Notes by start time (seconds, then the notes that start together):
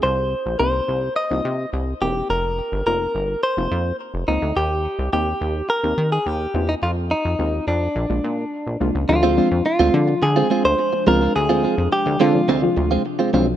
0.03 C2 C5
0.46 A#1
0.59 C2 A#3 C4 D#4 G4 C5
0.88 C2
1.16 D#5
1.30 C2 A#3 C4 D#4 F4
1.45 C3
1.73 C2
2.01 E1 A#3 C4 D#4 G4
2.30 F1 A#4
2.72 G1
2.86 F1 A#3 C4 D#4 F4 A#4
3.15 G1
3.43 C5
3.57 F1 A#3 C4 D#4 F4
3.71 F2
4.14 F1
4.28 C#2 A#3 C4 D#4 F4
4.42 D2
4.56 D#2 G4
4.99 C2
5.13 D#2 A#3 C4 D#4 G4
5.41 D#2
5.70 A#4
5.83 D#2 A#3 C4 D#4 G4
5.98 D#3
6.12 G#4
6.26 D#2 G4
6.54 E2 A#3 C4 D#4 F4
6.69 D#4
6.83 F2 F4
7.11 D#4
7.25 F2
7.39 D#2 G#3 C4 D#4 F4
7.67 F2 D4
7.96 A#1
8.10 A#1 G#3 A#3 D4 F4
8.24 A#2
8.67 A#1
8.80 C2 G#3 A#3 D4 F4
8.95 C#2
9.09 D2 C3 F3 G#3 C4 D4 F4, muted clean electric guitar stroke
9.23 G#3 C4 F4
9.37 F3 G#3 C4 D4 F4
9.52 F2
9.65 F4, muted clean electric guitar stroke
9.79 D2 G#3 C4 F4
9.94 D3 F3 G#3 C4 D4 F4, muted clean electric guitar stroke
10.08 muted clean electric guitar stroke
10.22 D3 G#4, muted clean electric guitar stroke
10.36 G#3 C4 F4
10.50 G#3 C4 F4
10.64 D2 C5, muted clean electric guitar stroke
10.79 muted clean electric guitar stroke
10.93 muted clean electric guitar stroke
11.07 C#2 F3 G#3 C4 D4 F4 A#4
11.21 G#3 C4 F4
11.36 D2 G#4, muted clean electric guitar stroke
11.49 G#3 C4 F4
11.63 G#3 C4 F4
11.78 F2, muted clean electric guitar stroke
11.92 G4, muted clean electric guitar stroke
12.06 D2, muted clean electric guitar stroke
12.20 D3 G#3 C4 F4
12.34 F3 G#3 C4 D4 F4, muted clean electric guitar stroke
12.48 D2 G#3 C4 F4
12.63 F3 G#3 C4 D4 F4, muted clean electric guitar stroke
12.77 D2, muted clean electric guitar stroke
12.91 G#3 C4 F4
13.05 muted clean electric guitar stroke
13.19 G#3 C4 F4
13.33 B1 F3 G#3 C4 D4 F4
13.47 muted clean electric guitar stroke